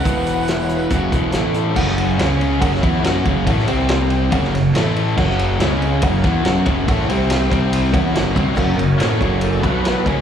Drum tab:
CC |----------------|x---------------|----------------|x---------------|
RD |----------------|--x-x-x-x-x-x-x-|x-x-x-x-x-x-x-x-|--x-x-x-x-x-x-x-|
HH |x-x-x-x-x-x-x-x-|----------------|----------------|----------------|
SD |----o-------o---|-o--o----o--o---|-o--o----oo-o---|-o--o-----o-o---|
BD |o-------o-o-----|o-------o-o---o-|o-------o-------|o-------o-o---o-|

CC |----------------|x---------------|
RD |x-x-x-x-x-x-x-x-|--x-x-x-x-x-x-x-|
HH |----------------|----------------|
SD |----o-------o---|----o-------o---|
BD |o-----o---o---o-|o-----o---o---o-|